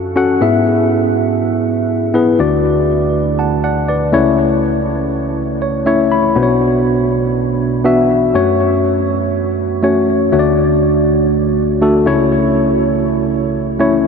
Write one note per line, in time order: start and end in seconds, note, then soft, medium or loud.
0.00 0.12 F#2 medium
0.00 0.16 C#4 medium
0.00 0.16 F#4 medium
0.00 0.17 A4 medium
0.00 0.17 F#5 medium
0.16 0.33 C#4 medium
0.16 0.34 F#4 medium
0.16 0.34 A4 medium
0.16 0.34 F#5 medium
0.41 2.36 G#2 medium
0.41 1.11 B3 medium
0.41 1.11 E4 medium
0.41 1.11 G#4 medium
0.41 1.11 E5 medium
2.14 2.32 B3 medium
2.14 2.32 E4 medium
2.14 2.32 G#4 medium
2.14 2.32 B4 medium
2.39 4.09 D2 medium
2.39 4.09 D3 medium
2.39 3.09 A3 medium
2.39 3.09 D4 medium
2.39 3.09 F#4 medium
2.39 3.09 D5 medium
3.39 3.63 F#5 medium
3.39 3.62 A5 medium
3.64 3.87 D5 medium
3.64 3.87 F#5 medium
3.88 4.36 B4 soft
3.88 4.35 D5 medium
4.13 6.08 C#2 medium
4.13 6.07 C#3 medium
4.13 4.92 A3 medium
4.13 4.92 C#4 medium
4.13 4.93 E4 medium
4.13 4.93 C#5 medium
5.62 5.85 C#5 medium
5.86 6.21 A3 medium
5.86 6.21 C#4 medium
5.86 6.21 E4 medium
5.86 6.22 C#5 medium
5.86 6.10 E5 medium
6.12 6.35 B5 medium
6.36 8.30 B1 medium
6.36 8.31 B2 medium
6.36 7.05 B3 medium
6.36 7.06 D4 medium
6.36 7.06 F#4 medium
6.36 6.42 C5 medium
6.43 7.09 C#5 medium
7.84 8.19 B3 medium
7.84 8.20 D4 medium
7.84 8.20 F#4 medium
7.84 8.20 E5 medium
8.34 10.29 F#2 medium
8.34 9.04 A3 medium
8.34 9.04 C#4 medium
8.34 9.04 F#4 medium
8.34 9.05 C#5 medium
9.83 10.18 A3 medium
9.83 10.18 C#4 medium
9.83 10.18 F#4 medium
9.83 10.18 C#5 medium
10.32 12.02 D2 medium
10.32 12.02 D3 medium
10.32 11.02 A3 medium
10.32 11.02 D4 medium
10.32 11.02 F#4 medium
10.32 10.39 C#5 medium
10.39 11.06 D5 medium
11.81 12.05 A3 medium
11.81 12.06 D4 medium
11.81 12.07 F#4 medium
11.81 12.07 A4 medium
12.06 14.01 C#2 medium
12.06 14.01 C#3 medium
12.06 12.86 A3 medium
12.06 12.86 C#4 medium
12.06 12.86 E4 medium
12.06 12.86 C#5 loud
13.79 14.07 A3 medium
13.79 14.07 C#4 medium
13.79 14.07 E4 medium
13.79 14.07 C#5 medium